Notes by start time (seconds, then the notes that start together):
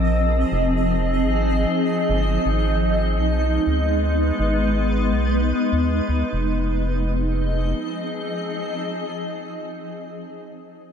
Already playing: A#1 F3 C4 D#4 G#4 D#5
0.52 F1
1.25 G#1
2.09 G1
2.46 G#1 G#3
2.51 B3
2.83 B4
3.18 B1
3.67 D2
4.39 G#1
5.12 B1
5.72 D#2
6.09 D2
6.33 F1 F3
6.40 C4
6.47 D#4
6.55 G#4
6.62 D#5